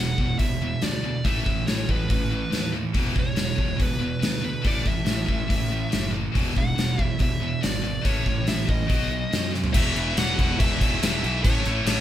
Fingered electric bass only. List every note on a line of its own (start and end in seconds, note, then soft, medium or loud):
0.00 0.15 E1 medium
0.18 0.35 E1 medium
0.40 0.73 E1 medium
0.83 1.16 D2 medium
1.25 1.42 A1 medium
1.47 1.63 A1 medium
1.67 1.84 A1 medium
1.89 2.05 A1 medium
2.10 2.44 A1 medium
2.51 2.85 D#2 medium
2.95 3.12 E1 medium
3.16 3.33 E1 medium
3.36 3.54 E1 medium
3.58 3.75 E1 medium
3.81 4.14 E1 medium
4.21 4.56 D2 medium
4.65 4.82 A1 medium
4.86 5.03 A1 medium
5.06 5.24 A1 medium
5.29 5.46 A1 medium
5.50 5.84 A1 medium
5.93 6.27 F#1 medium
6.36 6.52 E1 medium
6.56 6.73 E1 medium
6.79 6.95 E1 medium
7.00 7.16 E1 medium
7.20 7.54 E1 medium
7.65 7.97 G#1 medium
8.05 8.22 A1 medium
8.27 8.43 A1 medium
8.48 8.64 A1 medium
8.69 8.85 A1 medium
8.90 9.24 B1 medium
9.33 9.66 F#2 medium
9.75 9.93 E1 medium
9.97 10.15 E1 medium
10.17 10.35 E1 medium
10.39 10.57 E1 medium
10.61 10.97 E1 loud
11.03 11.20 E1 medium
11.23 11.45 B1 medium
11.45 11.62 A1 medium
11.66 11.84 A1 loud
11.85 12.01 A1 loud